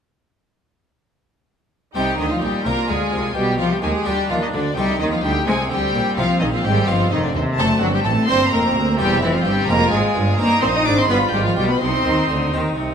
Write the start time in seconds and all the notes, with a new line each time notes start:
1.94 C2 C3 G3 C4 D#4 G4 G5
2.18 D2 D3 D#3 D#4 D#5
2.30 F3 F4 F5
2.41 A#1 A#2 G3 G4 G5
2.65 C2 C3 A#3 D4 F4 A#4 A#5
2.88 D2 D3 G#3 G#4 G#5
3.12 C2 C3
3.35 B1 B2 G3 G4 G5
3.58 C2 C3 F3 F4 F5
3.71 G3 G4 G5
3.82 D#2 D#3 G#3 G#4 G#5
4.05 D2 D3 G3 D4 F4 G4 G5
4.29 D#2 D#3 F3 F4 F5
4.42 D#3 D#4 D#5
4.53 D2 D3 D4 D5
4.76 C2 C3 G3 C4 D#4 G4 G5
5.00 D#2 D#3 D#4 D#5
5.11 F3 F4 F5
5.22 D2 D3 G3 G4 G5
5.47 C2 C3 G#3 C4 F4 G#4 G#5
5.69 D2 D3 G3 G4 G5
5.94 A#1 A#2
6.17 C2 C3 F3 F4 F5
6.40 A#1 A#2 D#3 D#4 D#5
6.53 F3 F4 F5
6.64 G#1 G#2 G3 G4 G5
6.87 G1 G2 F3 C4 D#4 F4 F5
7.11 F1 F2 D#3 D#4 D#5
7.24 D3 D4 D5
7.34 D#2 C3 C4 C5
7.57 F#1 F#2 A3 C4 D4 A4 A5
7.81 G1 G2 F#3 F#4 F#5
7.94 G3 G4 G5
8.05 A1 A2 A3 A4 A5
8.28 G1 G2 A#3 C4 D4 G4 C5 C6
8.51 F1 F2 A#3 A#4 A#5
8.75 D2
8.98 E1 E2 G3 A#3 C4 G4 G5
9.22 F1 F2 E3 E4 E5
9.34 F3 F4 F5
9.45 G1 G2 G3 G4 G5
9.69 F1 F2 G#3 A#3 C4 F4 A#4 A#5
9.92 G#1 G#2 G#3 G#4 G#5
10.15 G1 G2
10.38 G1 G2 A#3 C4 D#4 A#4 A#5
10.62 A#1 A#2 C4 C5 C6
10.74 D#4 D#5 D#6
10.85 G#1 G#2 D4 D5 D6
10.97 C4 C5 C6
11.09 G1 G2 B3 D4 F4 B4 B5
11.33 G#1 G#2 G3 G4 G5
11.44 F3 F4 F5
11.56 B1 B2 G3 G4 G5
11.69 B3 B4 B5
11.80 C2 C3 C4 D#4 C5 C6
12.05 D#2 D#3
12.28 D2 D3
12.52 D#2 D#3 C4 D#4
12.76 C2 C3